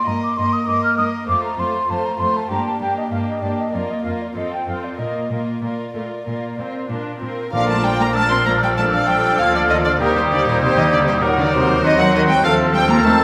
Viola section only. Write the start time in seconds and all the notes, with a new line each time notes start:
0.07 A#3
0.37 A#3
0.68 A#3
0.98 A#3
1.29 A3
1.59 A3
1.89 A3
2.19 A3
2.50 A#3
2.80 A#3
3.12 A#3
3.42 A#3
3.73 A#3
4.05 A#3
4.36 C4
4.67 C4
4.99 A#3
5.31 A#3
5.63 A#3
5.95 A3
6.27 A#3
6.59 C4
6.90 D4
7.22 C4
7.54 D3 F4
8.16 F3 D4
8.78 F3 D4
9.39 F4
10.01 G3 D#4
11.23 D#4
11.83 F#3 C4
12.44 F3 C4
13.05 F3 C4